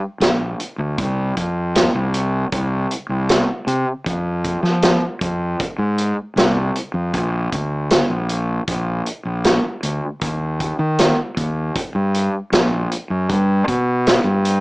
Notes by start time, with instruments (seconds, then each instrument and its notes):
0.20 fingered electric bass A#1, snare, closed hi-hat
0.60 closed hi-hat
0.78 fingered electric bass D2
0.98 fingered electric bass C2, kick, closed hi-hat
1.37 fingered electric bass F2, kick, closed hi-hat
1.75 snare, closed hi-hat
1.95 fingered electric bass C2
2.14 closed hi-hat
2.52 fingered electric bass C2, kick, closed hi-hat
2.91 closed hi-hat
3.09 fingered electric bass C2
3.29 snare, closed hi-hat
3.67 fingered electric bass C3, closed hi-hat
4.06 fingered electric bass F2, kick, closed hi-hat
4.44 kick, closed hi-hat
4.63 fingered electric bass F3, snare
4.82 snare, closed hi-hat
5.21 fingered electric bass F2, kick, closed hi-hat
5.60 kick, closed hi-hat
5.78 fingered electric bass G#2
5.98 closed hi-hat
6.36 fingered electric bass C2, snare, closed hi-hat
6.76 closed hi-hat
6.94 fingered electric bass F2
7.14 fingered electric bass A#1, kick, closed hi-hat
7.52 fingered electric bass D2, kick, closed hi-hat
7.90 snare, closed hi-hat
8.10 fingered electric bass A#1
8.29 closed hi-hat
8.68 fingered electric bass A#1, kick, closed hi-hat
9.06 closed hi-hat
9.25 fingered electric bass A#1
9.44 snare, closed hi-hat
9.83 fingered electric bass D2, closed hi-hat
10.21 fingered electric bass D#2, kick, closed hi-hat
10.60 kick, closed hi-hat
10.79 fingered electric bass D#3
10.99 snare, closed hi-hat
11.37 fingered electric bass D#2, kick, closed hi-hat
11.75 kick, closed hi-hat
11.95 fingered electric bass G2
12.14 closed hi-hat
12.52 fingered electric bass A#1, snare, closed hi-hat
12.92 closed hi-hat
13.10 fingered electric bass F#2
13.30 fingered electric bass G2, kick, closed hi-hat
13.68 fingered electric bass B2, kick, closed hi-hat
14.07 snare, closed hi-hat
14.24 fingered electric bass G2
14.45 closed hi-hat